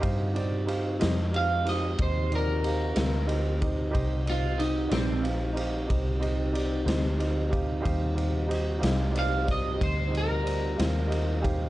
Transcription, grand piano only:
\new Staff \with { instrumentName = "Grand piano" } { \time 12/8 \key c \minor \tempo 4. = 61 <ees' g' c'' f''>8 <ees' g' c'' d''>8 <ees' g' c'' f''>8 <ees' g' c'' ees''>8 <ees' g' c'' f''>8 <ees' g' c'' ees''>8 <ees' g' c'' ees''>8 <ees' g' c'' d''>8 <ees' g' c'' f''>8 <ees' g' c'' f''>8 <ees' g' c'' ees''>8 <ees' g' c'' ees''>8 | <ees' g' c'' ees''>8 <ees' g' c'' ees''>8 <ees' g' c'' ees''>8 <ees' g' c'' d''>8 <ees' g' c'' f''>8 <ees' g' c'' f''>8 <ees' g' c'' ees''>8 <ees' g' c'' ees''>8 <ees' g' c'' d''>8 <ees' g' c'' ees''>8 <ees' g' c'' ees''>8 <ees' g' c'' f''>8 | <ees' g' c'' f''>8 <ees' g' c'' f''>8 <ees' g' c'' ees''>8 <ees' g' c'' f''>8 <ees' g' c'' d''>8 <ees' g' c'' d''>8 <ees' g' c'' ees''>8 <ees' g' c'' ees''>8 <ees' g' c'' d''>8 <ees' g' c'' f''>8 <ees' g' c'' ees'' f''>8 <ees' g' c'' f'' g''>8 | }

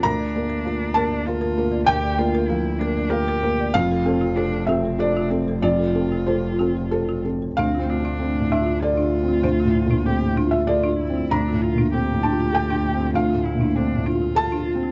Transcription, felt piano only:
\new Staff \with { instrumentName = "Felt piano" } { \time 3/4 \key d \minor \tempo 4 = 97 << { bes''4. a''4. | g''2 bes'4 | f''4. e''8 d''4 | d''4 c''4 a'4 |
f''4. e''8 d''4 | c''4.~ c''16 e''16 d''4 | bes''4. a''8 g''4 | f''4. r8 a''4 | } \\ { d,8 <bes bes'>8 <f' bes'>8 <bes bes'>8 <f' bes'>8 <bes bes'>8 | d,8 <bes bes'>8 <f bes'>8 <bes bes'>8 f'8 <bes bes'>8 | f,8 <c' a'>8 <f' a'>8 <c' a'>8 <f' a'>8 <c' a'>8 | f,8 <c' a'>8 <f' a'>8 <c' a'>8 f'8 <c' a'>8 |
\tuplet 3/2 { d,8 c'8 d'8 c'8 a,8 f'8 a'8 f'8 c'8 } | \tuplet 3/2 { d,8 a,8 bes,8 c'8 a,8 f'8 a'8 f'8 c'8 } | \tuplet 3/2 { d,8 a,8 bes,8 c'8 a,8 f'8 a'8 f'8 c'8 } | \tuplet 3/2 { d,8 a,8 bes,8 c'8 a,8 f'8 a'8 f'8 c'8 } | } >> }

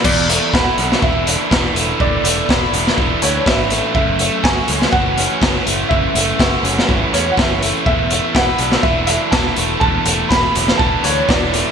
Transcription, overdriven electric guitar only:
\new Staff \with { instrumentName = "Overdriven electric guitar" } { \time 4/4 \key e \mixolydian \tempo 4 = 123 e,8 a8 e'8 d'8 e8 d'8 e8 a8 | e,8 a8 e'8 d'8 e8 d'8 e8 a8 | fis,8 a8 fis'8 cis'8 e8 cis'8 e8 a8 | fis,8 a8 fis'8 cis'8 e8 cis'8 e8 a8 |
e,8 a8 e'8 d'8 e8 d'8 e8 a8 | e,8 a8 e'8 d'8 e8 d'8 e8 a8 | }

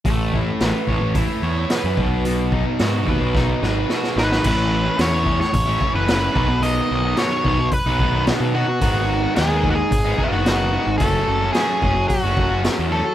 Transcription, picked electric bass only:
\new Staff \with { instrumentName = "Picked electric bass" } { \clef bass \time 4/4 \key a \lydian \tempo 4 = 110 a,,4 a,,16 r16 a,,16 a,,8 r16 e,8 r16 fis,16 b,,8~ | b,,4 gis,8 dis,16 b,,8. gis,,8 r8 gis,,8 | a,,4 e,4 a,,8 r16 fis,,8. b,,8~ | b,,8 b,,8 r8 b,,8 r16 b,,4 b,8 r16 |
gis,,4 dis,4 gis,,8 r16 fis,,4 gis,,16 | fis,,8 fis,,8 r8 fis,,8 r16 fis,,4 e,8 r16 | }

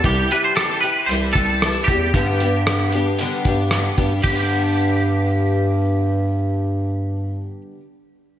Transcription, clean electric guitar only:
\new Staff \with { instrumentName = "Clean electric guitar" } { \time 4/4 \key g \major \tempo 4 = 114 g'8 b'16 c''16 a'8 b'8 c''8 a'4 g'8~ | g'2.~ g'8 r8 | g'1~ | g'1 | }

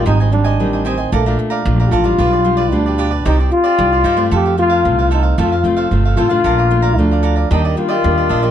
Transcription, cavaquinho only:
\new Staff \with { instrumentName = "Cavaquinho" } { \time 4/4 \key bes \major \tempo 4 = 113 <g' c'' ees'' aes''>16 <c'' ees'' aes''>16 r16 <c'' ees'' aes''>8 <c'' ees'' aes''>16 <g' c'' ees'' aes''>16 <c'' ees'' aes''>16 <a' d'' f'' bes''>16 <d'' f'' bes''>16 r16 <d'' f'' bes''>8 <d'' f'' bes''>16 <a' d'' f'' bes''>16 <d'' f'' bes''>16 | <f' g' b' d''>16 <g' b' d''>16 r16 <g' b' d''>8 <g' b' d''>16 <f' g' b' d''>16 <g' b' d''>16 <ees' g' c'' d''>16 <g' c'' d''>16 r16 <g' c'' d''>8 <g' c'' d''>16 <ees' g' c'' d''>16 <g' c'' d''>16 | <f' a' c'' f''>16 <a' c'' f''>16 r16 <a' c'' f''>8 <a' c'' f''>16 <f' a' c'' f''>16 <a' c'' f''>16 <f' a' c'' f''>16 <a' c'' f''>16 r16 <a' c'' f''>8 <a' c'' f''>16 <f' a' c'' f''>16 <a' c'' f''>16 | <a' d'' f'' bes''>16 <d'' f'' bes''>16 r16 <d'' f'' bes''>8 <d'' f'' bes''>16 <a' d'' f'' bes''>16 <d'' f'' bes''>16 <d' g' d'' ees''>16 <g' d'' ees''>16 r16 <g' d'' ees''>8 <g' d'' ees''>16 <d' g' d'' ees''>16 <g' d'' ees''>16 | }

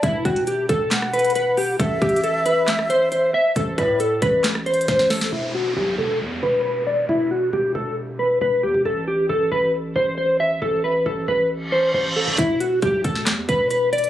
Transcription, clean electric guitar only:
\new Staff \with { instrumentName = "Clean electric guitar" } { \time 4/4 \key e \minor \tempo 4 = 136 e'8 fis'8 g'8 a'8 r8 b'8 b'8 g'8 | a'8 g'8 a'8 b'8 r8 c''8 c''8 e''8 | a'8 b'8 a'8 b'8 r8 c''8 c''8 a'8 | e'8 fis'8 g'8 a'8 r8 b'8 b'8 d''8 |
e'8 fis'8 g'8 a'8 r8 b'8 b'8 g'8 | a'8 g'8 a'8 b'8 r8 c''8 c''8 e''8 | a'8 b'8 a'8 b'8 r8 c''8 c''8 a'8 | e'8 fis'8 g'8 a'8 r8 b'8 b'8 d''8 | }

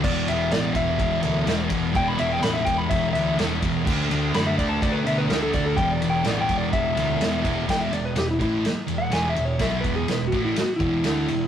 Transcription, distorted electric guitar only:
\new Staff \with { instrumentName = "Distorted electric guitar" } { \clef bass \time 4/4 \key d \lydian \tempo 4 = 125 <e, b, e>8 <b, e>8 <e, b, e>4. <b, e>8 <e, b, e>8 <b, e>8 | <e, b, e>8 <b, e>8 <e, b, e>4. <b, e>8 <e, b, e>8 <b, e>8 | <d a d'>8 <a d'>8 <d a d'>4. <a d'>8 <d a d'>8 <a d'>8 | <e, b, e>8 <b, e>8 <e, b, e>4. <b, e>8 <e, b, e>8 <b, e>8 |
<e, b, e>8 <e, b,>8 <e, b,>8 <a, e a>8 r8 <e, b,>8 <e, b, e>8 <e, b,>8 | <b, fis b>8 <e, b, e>8 <e, b,>8 <a, e a>8 r8 <e, b, e>8 <d a d'>8 <e, b,>8 | }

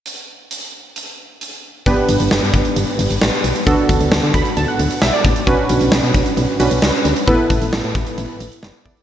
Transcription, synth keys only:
\new Staff \with { instrumentName = "Synth keys" } { \time 4/4 \key g \lydian \tempo 4 = 133 << { r1 | r1 | r4. b''8 a''16 fis''8. e''16 d''8. | r1 |
r1 | } \\ { r1 | <b d' g' b'>1 | <b d' fis' a'>1 | <cis' d' fis' b'>2~ <cis' d' fis' b'>8 <cis' d' fis' b'>4. |
<b e' a' b'>2.~ <b e' a' b'>8 <b e' a' d''>8 | } >> }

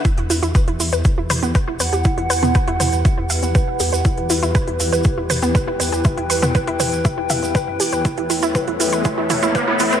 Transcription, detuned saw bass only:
\new Staff \with { instrumentName = "Detuned saw bass" } { \clef bass \time 4/4 \key e \dorian \tempo 4 = 120 r16 e,16 e,16 e,16 r16 e,16 e,16 e,16 r16 e,16 e,16 e,16 r16 e,,16 e,16 e,16 | r16 e,16 e,16 e,16 r16 e,16 e,16 e,16 r16 e,16 e,16 e,16 r16 e,,16 e,16 e,16 | r16 e,16 e,16 e,16 r16 e,16 e,16 e,16 r16 e,16 e,16 e,16 r16 e,,16 e,16 e,16 | r16 e,16 e,16 e,16 r16 e,16 e,16 e,16 r16 e,16 e,16 e,16 r16 fis,16 e,,16 e,16 |
r16 e,16 e,16 e,16 r16 e,16 e,16 e,16 r16 e,16 e,16 e,16 r16 e,,16 e,16 e,16 | }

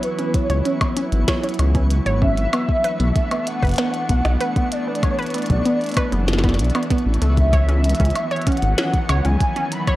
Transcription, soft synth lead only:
\new Staff \with { instrumentName = "Soft synth lead" } { \time 4/4 \key cis \phrygian \tempo 4 = 96 b'8 cis''4 r2 e''8~ | e''4. fis''2 d''8 | cis''8 d''4 r2 e''8~ | e''4. fis''4~ fis''16 gis''8. b''8 | }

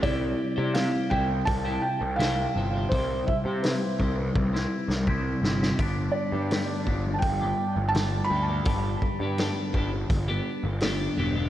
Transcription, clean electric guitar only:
\new Staff \with { instrumentName = "Clean electric guitar" } { \time 4/4 \key c \major \tempo 4 = 84 <c g c' e' g' c''>8. <c' e' g' c''>16 <c g c' e' g' c''>8 <c' e' g' c''>8. <c' e' g' c''>8. <c g c' e' g' c''>8 <c' e' g' c''>16 <c' e' g' c''>16 | <c g c' e' g' c''>8. <c' e' g' c''>16 <c g c' e' g' c''>8 <c' e' g' c''>8. <c' e' g' c''>8. <c g c' e' g' c''>8 <c' e' g' c''>16 <c' e' g' c''>16 | <g, d g b d' g'>8. <g b d' g'>16 <g, d g b d' g'>8 <g b d' g'>8. <g b d' g'>8. <g, d g b d' g'>8 <g b d' g'>16 <g b d' g'>16 | <g, d g b d' g'>8. <g b d' g'>16 <g, d g b d' g'>8 <g b d' g'>8. <g b d' g'>8. <g, d g b d' g'>8 <g b d' g'>16 <g b d' g'>16 | }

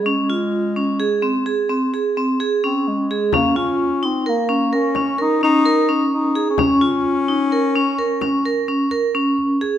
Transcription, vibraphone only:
\new Staff \with { instrumentName = "Vibraphone" } { \time 7/4 \key des \major \tempo 4 = 129 des'8 f'4 des'8 aes'8 c'8 aes'8 c'8 aes'8 c'8 aes'8 des'4 aes'8 | des'8 f'4 ees'8 bes'8 des'8 bes'8 des'8 bes'8 des'8 bes'8 des'4 aes'8 | des'8 f'4 ees'8 bes'8 des'8 bes'8 des'8 bes'8 des'8 bes'8 des'4 aes'8 | }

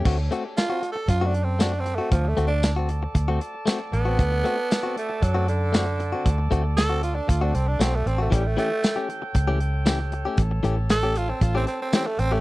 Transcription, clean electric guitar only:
\new Staff \with { instrumentName = "Clean electric guitar" } { \time 4/4 \key a \dorian \tempo 4 = 116 <a c' fis'>16 r16 <a c' fis'>16 r8 <c' fis'>16 r8. <a c' fis'>16 r8 <a c' fis'>16 r8 <c' fis'>16 | r8 <a c' fis'>16 r8 <c' fis'>16 r8. <a c' fis'>16 r8 <a c' fis'>16 r8 <c' fis'>16 | r8 <a c' fis'>16 r8 <c' fis'>16 r8. <a c' fis'>16 r8 <a c' fis'>16 r8 <c' fis'>16 | r8 <a c' fis'>16 r8 <c' fis'>16 r8. <a c' fis'>16 r8 <a c' fis'>16 r8 <c' fis'>16 |
<e a cis' g'>16 r16 <e a cis' g'>16 r8 <a cis' g'>16 r8. <e a cis' g'>16 r8 <e a cis' g'>16 r8 <a cis' g'>16 | r8 <e a cis' g'>16 r8 <a cis' g'>16 r8. <e a cis' g'>16 r8 <e a cis' g'>16 r8 <a cis' g'>16 | }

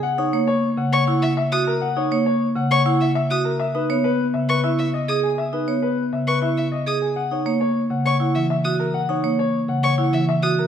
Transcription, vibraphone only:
\new Staff \with { instrumentName = "Vibraphone" } { \time 3/4 \key fis \mixolydian \tempo 4 = 101 r16 dis'16 cis''16 r4 e'16 r8 fis'16 r16 | r16 dis'16 cis''16 r4 e'16 r8 fis'16 r16 | r16 dis'16 cis''16 r4 e'16 r8 gis'16 r16 | r16 dis'16 cis''16 r4 e'16 r8 gis'16 r16 |
r16 dis'16 cis''16 r4 e'16 r8 fis'16 r16 | r16 dis'16 cis''16 r4 e'16 r8 fis'16 r16 | }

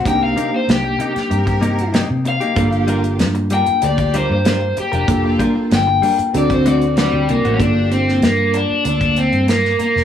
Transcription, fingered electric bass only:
\new Staff \with { instrumentName = "Fingered electric bass" } { \clef bass \time 4/4 \key g \minor \tempo 4 = 96 c,8 r8 c,8 r8 g,4~ g,16 c8 r16 | g,,4 g,8. r16 d,8. g,8. r16 f,,16 | f,,8 r8 g,,8 r8 d,4~ d,16 d,16 c,16 a,,16 | g,,4 g,8. r16 d,8. g,8. r16 f,,16 | }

